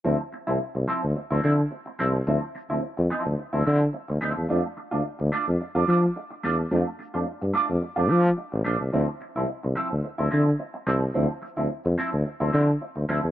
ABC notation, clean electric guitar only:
X:1
M:4/4
L:1/16
Q:1/4=108
K:Dm
V:1 name="Clean electric guitar"
[F,CE] z2 [F,CE] z2 [F,CE] z2 [F,CE] [F,CE] z3 [F,CE] z | [F,CE] z2 [F,CE] z2 [F,CE] z2 [F,CE] [F,CE] z3 [F,CE] z | [A,DF] z2 [A,DF] z2 [A,DF] z2 [A,DF] [A,DF] z3 [A,DF] z | [A,DF] z2 [A,DF] z2 [A,DF] z2 [A,DF] [A,DF] z3 [A,DF] z |
[F,CE] z2 [F,CE] z2 [F,CE] z2 [F,CE] [F,CE] z3 [F,CE] z | [F,CE] z2 [F,CE] z2 [F,CE] z2 [F,CE] [F,CE] z3 [F,CE] z |]